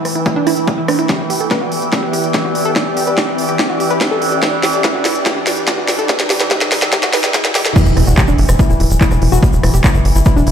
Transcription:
Already playing: E3 E4 B4 G5 E6, riser
0.05 cross-stick, open hi-hat
0.15 E4, closed hi-hat
0.26 E4, kick, closed hi-hat
0.36 D4
0.47 E4, cross-stick, open hi-hat
0.57 closed hi-hat
0.68 E5, kick, closed hi-hat
0.78 E5
0.88 D4, cross-stick, open hi-hat
0.99 E4, closed hi-hat
1.09 G4, kick, snare, closed hi-hat
1.15 D5
1.30 G4, open hi-hat
1.40 A4, closed hi-hat
1.51 B4, kick, snare, closed hi-hat
1.61 F#4
1.72 open hi-hat
1.82 closed hi-hat
1.93 G4, kick, snare, closed hi-hat
2.03 G4
2.13 G4, open hi-hat
2.24 closed hi-hat
2.34 G4, kick, snare, closed hi-hat
2.45 F#4
2.55 G4, open hi-hat
2.65 A4, closed hi-hat
2.76 D5, kick, snare, closed hi-hat
2.97 G4, open hi-hat
3.07 B4, closed hi-hat
3.18 G4, kick, snare, closed hi-hat
3.28 G4
3.38 open hi-hat
3.49 G4, closed hi-hat
3.59 G4, kick, snare, closed hi-hat
3.70 F#4
3.80 G4, open hi-hat
3.90 B4, closed hi-hat
4.01 G4, kick, snare, closed hi-hat
4.11 A4
4.22 G4, open hi-hat
4.32 G4, closed hi-hat
4.43 G4, kick, snare, closed hi-hat
4.63 G4, snare, open hi-hat
4.74 A4, closed hi-hat
4.84 B4, kick, snare, closed hi-hat
4.95 F#4
5.05 snare, open hi-hat
5.15 closed hi-hat
5.26 G4, kick, snare, closed hi-hat
5.36 G4
5.47 G4, snare, open hi-hat
5.57 closed hi-hat
5.68 G4, kick, snare, closed hi-hat
5.78 F#4
5.88 G4, snare, open hi-hat
5.99 A4, closed hi-hat
6.09 D5, kick, snare, closed hi-hat
6.20 snare
6.30 G4, snare, open hi-hat
6.40 B4, snare, closed hi-hat
6.51 G4, kick, snare, closed hi-hat
6.61 G4, snare
6.72 snare, open hi-hat
6.82 G4, snare, closed hi-hat
6.93 G4, kick, snare, closed hi-hat
7.03 F#4, snare
7.13 B4, snare, open hi-hat
7.24 G4, snare, closed hi-hat
7.34 F#4, kick, snare, closed hi-hat
7.45 F#4, snare
7.55 G4, snare, open hi-hat
7.66 A4, snare, closed hi-hat
7.76 E3 E4, kick, closed hi-hat, crash, sub drop, shaker
7.86 E1, shaker
7.97 E1 E4, cross-stick, open hi-hat
8.07 E1 F#4, closed hi-hat, shaker
8.17 G4, kick, clap, closed hi-hat, shaker
8.28 E1 D4, shaker
8.38 F#1, open hi-hat
8.48 E1, cross-stick, closed hi-hat, shaker
8.59 E4, kick, closed hi-hat, shaker
8.70 D1 E4, shaker
8.80 D1 E4, open hi-hat
8.90 D1, closed hi-hat, shaker
9.01 E4, kick, clap, closed hi-hat, shaker
9.11 E1 D4, cross-stick, shaker
9.22 E1 E4, open hi-hat
9.32 E1 F#4, closed hi-hat, shaker
9.43 B4, kick, closed hi-hat, shaker
9.53 E1, shaker
9.63 E1 E4, cross-stick, open hi-hat
9.74 E1 G4, closed hi-hat, shaker
9.84 E4, kick, clap, closed hi-hat, shaker
9.94 G1 E4, shaker
10.05 G1, open hi-hat
10.15 G1 E4, closed hi-hat, shaker
10.25 E4, kick, cross-stick, closed hi-hat, shaker
10.36 E1 D4, shaker
10.47 E1 E4, open hi-hat

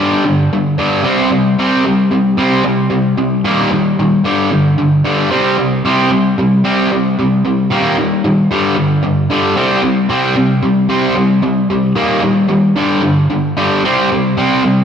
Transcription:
Already playing: G2
0.00 D3 G3
0.25 G2 D3
0.53 G2 D3
0.78 G2 D3 G3
1.04 C3 G3 C4
1.31 C3 G3
1.59 C3 G3 C4
1.85 C3 G3
2.11 C3 G3
2.37 C3 G3 C4
2.64 C3 G3
2.90 C3 G3
3.17 C3 G3
3.45 D#3 G3 A#3
3.71 D#3 G3
3.99 D#3 G3
4.24 G2 D3 G3
4.51 G2 D3
4.78 G2 D3
5.05 G2 D3 G3
5.30 C3 G3 C4
5.58 C3 G3
5.85 C3 G3 C4
6.11 C3 G3
6.38 C3 G3
6.65 C3 G3 C4
6.92 C3 G3
7.19 C3 G3
7.45 C3 G3
7.71 D#3 G3 A#3
7.98 D#3 G3
8.24 D#3 G3
8.51 G2 D3 G3
8.76 G2 D3
9.03 G2 D3
9.30 G2 D3 G3
9.57 C3 G3 C4
9.83 C3 G3
10.09 C3 G3 C4
10.36 C3 G3
10.63 C3 G3
10.89 C3 G3 C4
11.16 C3 G3
11.42 C3 G3
11.70 C3 G3
11.95 D#3 G3 A#3
12.21 D#3 G3
12.48 D#3 G3
12.76 G2 D3 G3
13.02 G2 D3
13.30 G2 D3
13.57 G2 D3 G3
13.84 C3 G3 C4
14.12 C3 G3
14.37 C3 G3 C4
14.64 C3 G3

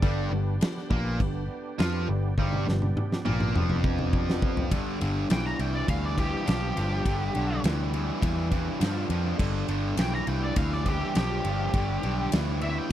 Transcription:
0.02 G1 G2 G3 B3 D4 G4, kick, crash
0.31 G1 G2
0.61 snare, crash
0.77 snare
0.90 A#1 A#2 A#3, kick
1.20 G1 G2, kick, crash
1.79 F2 F3 F4, snare, crash
2.08 G1 G2
2.38 G1 G2 G3 C4 D#4 G#4, kick
2.53 B3 D4 G4, high tom
2.67 G1 G2, snare
2.82 high tom
2.97 mid tom
3.12 snare
3.25 A#1 A#2 A#3, mid tom
3.40 mid tom
3.55 F1 F2 F3, mid tom
3.70 mid tom
3.84 kick
3.99 mid tom
4.13 kick
4.30 snare
4.42 kick
4.57 floor tom
4.71 G1 G2 D3 B3 D4 G4 D5, kick, ride
5.01 G1 G2 D3, ride
5.30 B1 G2 E3 G5, snare, ride
5.46 A#5, snare
5.59 C2 G2 E3 G5, ride
5.75 D5
5.88 D2 G2 E3 F5, kick, ride
6.05 D5
6.17 G2 E3 G4, kick, ride
6.45 B1 G2 F3 G4, snare, ride
6.76 G1 G2 F3, ride
7.05 G1 G2 D3 B3 D4 G4, kick, ride
7.35 B1 G2 D3, ride
7.64 D2 G2 E3, snare, ride
7.93 G2 E3, ride
8.21 E2 G2 E3, kick, ride
8.51 G2 E3, kick, ride
8.80 G2 F3, snare, ride
9.10 F2 G2 F3, ride
9.38 G1 G2 D3 C4 D#4 G#4 D#5, kick, crash
9.58 B3 D4 G4 D5
9.68 G1 G2 D3, ride
9.97 B1 G2 E3 G5, snare, ride
10.15 A#5, snare
10.26 C2 G2 E3 G5, ride
10.43 D5
10.55 D2 G2 E3 F5, kick, ride
10.72 D5, snare
10.85 G2 E3 G4, kick, ride
11.15 B1 G2 F3 G4, snare, ride
11.44 G1 G2 F3, ride
11.74 G1 G2 D3 B3 D4 G4 D5, kick, ride
12.03 B1 G2 D3, ride
12.32 D2 G2 E3, snare, ride
12.61 G2 E3 E5, ride
12.78 G5

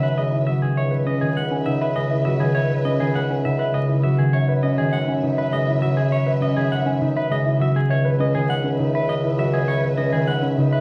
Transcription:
Already playing: F#2 C#3 D#3 F#3 G#3 B4 E5
0.03 B4 E5
0.17 G#3 G#4 D#5
0.32 E4 E5
0.47 F#3 F#4 E5
0.62 D#3 G#4
0.77 C#2 B4 C#5 E5
0.91 B4
1.06 G#3 C#4 D#5
1.21 D#3 G#4
1.36 G#3 F#5
1.51 C#4 G#5
1.66 C#3 D#4 E5 F#5
1.81 B4 E5
1.95 G#3 G#4 D#5
2.11 E4 E5
2.25 F#3 F#4 E5
2.40 D#3 G#4
2.55 C#5 E5
2.70 B4
2.85 G#3 C#4 D#5
3.00 D#3 G#4
3.15 G#3 F#5
3.30 C#4 G#5
3.45 C#3 D#4 E5 F#5
3.59 B4 E5
3.74 G#3 G#4 D#5
3.89 E4 E5
4.03 F#3 F#4 E5
4.19 D#3 G#4
4.33 F#2 B4 C#5 E5
4.48 B4
4.63 G#3 C#4 D#5
4.78 D#3 G#4
4.93 G#3 F#5
5.08 C#4 G#5
5.23 C#3 D#4
5.38 B4 E5
5.52 G#3 G#4 D#5
5.67 E4 E5
5.82 F#3 F#4 E5
5.97 G#4
6.12 C#5 E5
6.26 B4
6.41 G#3 C#4 D#5
6.56 D#3 G#4
6.71 G#3 F#5
6.86 C#4 G#5
7.01 C#3 D#4
7.16 B4 E5
7.30 G#3 G#4 D#5
7.45 E4 E5
7.59 F#3 F#4 E5
7.76 G#4
7.89 C#2 B4 C#5 E5
8.05 B4
8.19 G#3 C#4 D#5
8.34 D#3 G#4
8.49 G#3 F#5
8.64 C#4
8.79 C#3 D#4
8.94 B4 E5
9.08 G#3 D#5
9.23 E4 E5
9.38 F#3 F#4 E5
9.54 G#4
9.68 C#5 E5
9.83 B4
9.98 G#3 C#4 D#5
10.12 D#3 G#4
10.27 G#3 F#5
10.42 C#4
10.57 C#3 D#4
10.72 B4 E5

